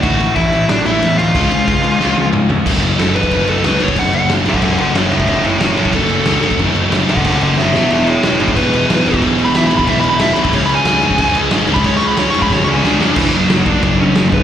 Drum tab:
CC |x-x-x-x-x-x-x-x-|x-x-x-x---------|x-x-x-x-x-x-x-x-|x-x-x-x-x-x-x-x-|
SD |--------o-------|--------o-------|----o-------o---|----o-------o---|
T1 |----------------|----------o-----|----------------|----------------|
T2 |----------------|------------o---|----------------|----------------|
FT |----------------|--------------o-|----------------|----------------|
BD |o---o-----------|o---o-----------|o------oo------o|o------oo------o|

CC |x-x-x-x-x-x-x-x-|x-x-x-x-x-x-----|x-x-x-x-x-x-x-x-|x-x-x-x-x-x-x-x-|
SD |----o-------o---|----o-------o-o-|----o-------o---|----o-------o---|
T1 |----------------|----------------|----------------|----------------|
T2 |----------------|----------------|----------------|----------------|
FT |----------------|----------------|----------------|----------------|
BD |o------oo------o|o------oo-------|-------oo------o|o------oo------o|

CC |x-x-x-x-x-x-x-x-|x-x-x-x---------|x---x---x---x---|
SD |----o-------o---|----o---o---o-o-|----o-------o---|
T1 |----------------|----------------|----------------|
T2 |----------------|----------------|----------------|
FT |----------------|----------------|----------------|
BD |o------oo------o|o------oo-------|o-----o-o-----o-|